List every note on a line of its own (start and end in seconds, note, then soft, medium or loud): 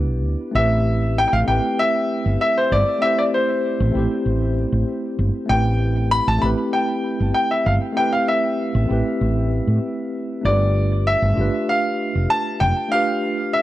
0.00 0.57 B3 medium
0.00 0.57 D4 medium
0.00 0.55 E4 medium
0.00 0.57 G4 medium
0.00 0.56 B4 medium
0.09 0.24 B1 loud
0.24 0.35 D2 medium
0.51 1.24 A1 medium
0.51 1.42 A3 medium
0.51 1.43 C4 medium
0.51 1.44 E4 medium
0.55 1.45 G4 medium
0.55 1.46 B4 medium
0.55 1.19 E5 loud
1.18 1.26 G5 loud
1.28 1.32 G5 medium
1.33 1.43 A1 loud
1.33 1.38 F5 loud
1.44 2.97 A3 medium
1.44 2.98 C4 medium
1.44 2.99 E4 medium
1.44 1.80 G5 loud
1.48 1.59 A1 loud
1.48 3.00 G4 medium
1.48 3.01 B4 medium
1.79 2.40 E5 loud
2.26 2.36 G1 medium
2.41 2.56 E5 medium
2.58 2.72 C5 medium
2.72 2.82 G1 loud
2.72 3.04 D5 loud
2.99 3.90 A3 medium
2.99 3.91 C4 medium
2.99 3.91 E4 medium
2.99 3.19 E5 loud
3.04 3.92 G4 medium
3.04 3.93 C5 medium
3.19 3.24 D5 medium
3.34 4.53 C5 medium
3.80 3.90 A1 loud
3.91 4.06 A1 medium
3.91 5.44 A3 medium
3.91 5.45 C4 medium
3.91 5.46 E4 medium
3.97 5.47 G4 medium
3.97 5.48 C5 medium
4.26 4.64 A1 medium
4.72 4.83 A1 medium
5.19 5.30 G1 medium
5.46 6.19 A1 loud
5.46 6.37 A3 medium
5.46 6.38 C4 medium
5.46 6.39 E4 medium
5.46 6.07 G5 loud
5.51 6.40 G4 medium
5.51 6.41 B4 medium
6.11 6.26 B5 loud
6.27 6.38 A1 loud
6.27 6.43 A5 loud
6.38 7.91 A3 medium
6.38 7.92 C4 medium
6.38 7.93 E4 medium
6.38 6.49 B5 loud
6.43 6.53 A1 medium
6.43 7.94 G4 medium
6.43 7.95 B4 loud
6.73 7.33 G5 medium
7.20 7.30 G1 medium
7.34 7.51 G5 medium
7.51 7.67 E5 medium
7.66 7.77 G1 loud
7.66 7.73 F5 medium
7.93 8.84 A3 medium
7.93 8.85 C4 medium
7.93 8.86 E4 medium
7.97 8.87 G4 medium
7.97 8.88 B4 loud
7.97 8.12 G5 loud
8.13 8.27 F5 medium
8.28 9.48 E5 medium
8.75 8.85 A1 loud
8.85 10.39 A3 medium
8.85 10.40 C4 medium
8.85 10.41 E4 medium
8.90 9.01 A1 medium
8.90 10.42 G4 medium
8.90 10.42 B4 medium
9.21 9.59 A1 loud
9.67 9.78 A2 medium
10.41 11.14 G1 loud
10.41 11.32 A3 medium
10.41 11.33 D4 medium
10.41 11.34 F4 medium
10.45 11.35 G4 medium
10.45 11.36 B4 medium
10.45 11.09 D5 medium
11.07 11.70 E5 loud
11.22 11.32 G1 loud
11.33 11.48 G1 medium
11.33 12.86 A3 medium
11.33 12.87 D4 medium
11.33 12.88 F4 medium
11.39 12.89 G4 medium
11.39 12.90 B4 loud
11.69 12.27 F5 loud
12.15 12.25 F1 medium
12.30 12.62 A5 loud
12.60 12.72 F1 loud
12.60 12.93 G5 loud
12.88 13.62 A3 medium
12.88 13.62 D4 medium
12.88 13.62 F4 medium
12.88 13.56 F5 loud
12.94 13.62 G4 medium
12.94 13.62 B4 medium
13.53 13.62 E5 medium